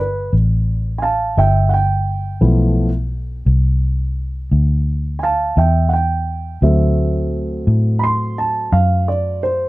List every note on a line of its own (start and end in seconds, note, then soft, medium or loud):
0.00 0.29 G1 medium
0.00 0.32 B4 medium
0.33 1.34 A1 medium
0.98 1.35 F5 medium
0.98 1.02 G#5 medium
1.03 1.37 A5 medium
1.37 2.39 G1 medium
1.37 1.70 E5 medium
1.37 1.72 G5 medium
1.69 1.73 F#5 soft
1.74 2.41 G5 medium
2.41 3.44 B1 medium
2.41 2.88 F3 soft
2.41 2.88 A3 soft
2.41 2.88 B3 soft
2.41 2.88 E4 soft
3.46 4.48 C2 medium
4.51 5.54 D2 medium
5.19 5.23 G#5 soft
5.23 5.55 F5 medium
5.23 5.57 A5 medium
5.57 6.59 E2 medium
5.57 5.90 E5 medium
5.57 5.92 G5 medium
5.89 5.93 F#5 soft
5.93 6.61 G5 medium
6.62 7.64 D2 medium
6.62 9.69 F#3 soft
6.62 9.69 A3 soft
6.62 9.69 C4 soft
6.62 9.69 E5 soft
7.67 8.69 A2 medium
7.99 8.03 B5 medium
8.04 8.37 C6 medium
8.38 8.72 A5 medium
8.72 9.69 F#2 medium
8.72 9.06 F5 medium
9.08 9.42 D5 medium
9.43 9.69 C5 medium